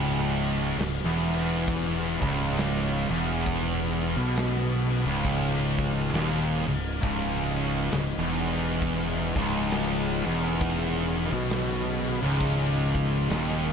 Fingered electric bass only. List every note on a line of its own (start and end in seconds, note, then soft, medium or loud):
0.00 0.74 C#1 medium
0.78 1.03 C#1 medium
1.04 2.17 E1 medium
2.22 3.07 C#1 loud
3.10 4.14 E1 loud
4.17 5.03 B1 medium
5.06 6.10 C#1 loud
6.13 6.64 D#1 medium
6.67 7.01 C#1 medium
7.03 7.89 C#1 loud
7.92 8.17 C#1 medium
8.18 9.31 E1 medium
9.35 10.21 C#1 loud
10.26 11.29 E1 medium
11.32 12.18 B1 medium
12.23 13.27 C#1 medium
13.30 13.73 D#1 loud